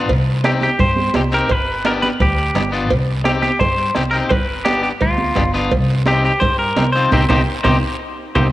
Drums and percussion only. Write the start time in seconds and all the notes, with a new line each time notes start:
0.09 bombo low, cowbell, high conga, long guiro
0.44 bombo rim, cowbell, high conga, short guiro
0.61 high conga, short guiro
0.79 bombo low, cowbell, high conga, low conga, long guiro
0.96 high conga
1.14 bombo rim, cowbell, high conga, low timbale, short guiro
1.32 short guiro
1.49 bombo low, cowbell, high conga, long guiro
1.85 bombo rim, cowbell, high conga, short guiro
2.03 high conga, short guiro
2.20 bombo low, cowbell, high conga, low conga, long guiro
2.55 bombo rim, cowbell, high conga, low conga, short guiro
2.73 short guiro
2.90 bombo low, cowbell, high conga, long guiro
3.24 bombo rim, cowbell, high conga, short guiro
3.43 high conga, short guiro
3.59 bombo low, bombo rim, cowbell, high conga, low conga, long guiro
3.95 bombo rim, cowbell, high conga, short guiro
4.13 short guiro
4.30 bombo low, cowbell, high conga, low conga, long guiro
4.65 bombo rim, cowbell, high conga, short guiro
4.83 short guiro
5.00 bombo low, cowbell, high conga, low conga, long guiro
5.18 high conga
5.35 bombo low, bombo rim, cowbell, high conga, low conga, short guiro
5.54 short guiro
5.71 bombo low, cowbell, high conga, low conga, long guiro
6.06 bombo rim, cowbell, high conga, short guiro
6.25 short guiro
6.41 bombo low, cowbell, high conga, low conga, long guiro
6.77 bombo rim, cowbell, high conga, low conga, short guiro
6.95 short guiro
7.12 bombo low, high conga, high timbale, long guiro
7.29 bombo low, high conga, high timbale, long guiro
7.64 bombo low, high conga, high timbale, long guiro
8.35 bombo low, high conga, high timbale, long guiro